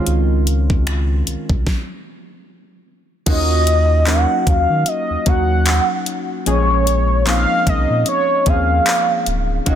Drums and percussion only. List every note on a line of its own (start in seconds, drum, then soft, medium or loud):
0.07 closed hi-hat medium
0.47 closed hi-hat medium
0.70 kick medium
0.87 finger snap loud
0.87 closed hi-hat medium
1.27 closed hi-hat medium
1.50 kick loud
1.67 kick loud
1.67 snare medium
3.26 kick loud
3.26 closed hi-hat medium
3.26 crash loud
3.67 closed hi-hat medium
4.07 clap loud
4.07 closed hi-hat medium
4.47 kick loud
4.47 closed hi-hat medium
4.86 closed hi-hat medium
5.26 kick medium
5.26 closed hi-hat medium
5.66 clap loud
5.66 closed hi-hat medium
6.06 closed hi-hat medium
6.46 closed hi-hat medium
6.87 closed hi-hat medium
7.27 clap loud
7.27 closed hi-hat medium
7.67 kick loud
7.67 closed hi-hat medium
8.06 closed hi-hat medium
8.46 kick loud
8.46 closed hi-hat medium
8.86 clap loud
8.86 closed hi-hat medium
9.26 closed hi-hat medium
9.66 kick loud
9.66 closed hi-hat medium